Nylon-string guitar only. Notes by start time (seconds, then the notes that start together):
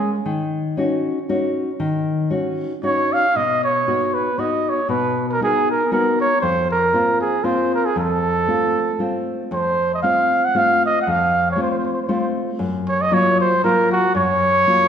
Already playing: G#3 A#3 C#4
0.26 D#3
0.77 C#4 D#4 F#4
1.29 C#4 D#4 F#4
1.80 D#3
2.30 C#4 D#4 F#4
2.83 C#4 D#4 F#4
3.36 B2
3.87 B3 D#4 F#4
4.38 B3 D#4 F#4
4.89 B2
5.40 B3 D#4 F#4
5.91 B3 D#4 F#4
6.42 F2
6.93 A#3 C4 F4
7.44 A#3 C4 F4
7.96 F2
8.47 A3 C4 F4
8.99 A3 C4 F4
9.51 F2
10.03 A3 C4 F4
10.55 A3 C4 F4
11.07 F2
11.56 A3 C4 F4
12.08 A3 C4 F4
12.59 F#2
13.11 F#3 A#3 F4
13.64 F#3 A#3 F4
14.15 F#2
14.67 F#3 A#3 F4